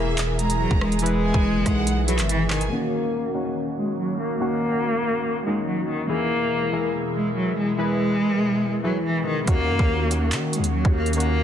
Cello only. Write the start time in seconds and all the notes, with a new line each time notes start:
Already playing: A#3
0.39 G#3
0.60 F#3
0.81 G#3
1.03 G#3
2.08 F#3
2.29 E3
2.50 D#3
2.71 A#3
3.77 G#3
3.98 F#3
4.19 A#3
4.40 A#3
5.46 G#3
5.67 F#3
5.89 D#3
6.10 A#3
7.15 G#3
7.37 F#3
7.57 G#3
7.79 G#3
8.84 F#3
9.06 E3
9.27 D#3
9.48 A#3
10.53 G#3
10.74 F#3
10.96 A#3
11.16 A#3